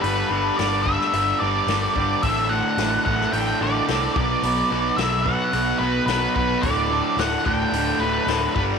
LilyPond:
<<
  \new Staff \with { instrumentName = "Lead electric guitar" } { \time 4/4 \key d \major \tempo 4 = 109 b'4 d''8 e''4 d''4 d''8 | e''8 fis''4 fis''8 g''8 d''4 d''8~ | d''4 e''8 fis''4 b'8 b'8 b'8 | d''4 fis''8 g''4 b'4 b'8 | }
  \new Staff \with { instrumentName = "Twelve-string acoustic guitar" } { \time 4/4 \key d \major r1 | r1 | r1 | <d g d' g' a'>16 d'8. <d g d' g' a'>8 <g d' g' a'>16 <d' g' a'>8 <d' g' a'>16 <g g' a'>8 <d g d' g' a'>8 <g g' a'>16 <d' g' a'>16 | }
  \new Staff \with { instrumentName = "Distorted electric guitar" } { \clef bass \time 4/4 \key d \major <g, d g>8 <g, d g>8 <g, d g>8 <g, d g>8 <g, d g>8 <g, d g>8 <g, d g>8 <g, d g>8 | <d, a, d>8 <d, a, d>8 <d, a, d>8 <d, a, d>8 <d, a, d>8 <d, a, d>8 <d, a, d>8 <b, fis b>8 | <b, fis b>8 <b, fis b>8 <b, fis b>8 <b, fis b>8 <b, fis b>8 <b, fis b>8 <b, fis b>8 <b, fis b>8 | <d, a, d>8 <d, a, d>8 <d, a, d>8 <d, a, d>8 <d, a, d>8 <d, a, d>8 <d, a, d>8 <g, d g>8 | }
  \new Staff \with { instrumentName = "Overdriven electric guitar" } { \clef bass \time 4/4 \key d \major <g, d g>8 <g, d g>8 <g, d g>8 <g, d g>8 <g, d g>8 <g, d g>8 <g, d g>8 <g, d g>8 | <d, a, d>8 <d, a, d>8 <d, a, d>8 <d, a, d>8 <d, a, d>8 <d, a, d>8 <d, a, d>8 <b, fis b>8 | <b, fis b>8 <b, fis b>8 <b, fis b>8 <b, fis b>8 <b, fis b>8 <b, fis b>8 <b, fis b>8 <b, fis b>8 | <d, a, d>8 <d, a, d>8 <d, a, d>8 <d, a, d>8 <d, a, d>8 <d, a, d>8 <d, a, d>8 <g, d g>8 | }
  \new Staff \with { instrumentName = "Picked electric bass" } { \clef bass \time 4/4 \key d \major g,,8 g,,8 g,,4 g,,8 g,,8 g,,8 g,,8 | a,,4 a,,8 a,,8 a,,8 a,,8 c,8 b,,8 | b,,8 b,,8 b,,4 b,,8 b,,8 b,,8 b,,8 | d,,4 d,,8 d,,8 d,,8 d,,8 d,,8 g,,8 | }
  \new DrumStaff \with { instrumentName = "Drums" } \drummode { \time 4/4 hho4 <hho sn>8 bd16 sn16 hho4 <hho sn>8 bd8 | <hho bd>4 <hho sn>8 bd16 sn16 hho4 <hho sn>8 bd8 | hho4 <hho sn>8 bd8 hho4 <hho sn>8 bd8 | <hho bd>4 <hho sn>8 bd8 hho4 <hho sn>8 bd8 | }
>>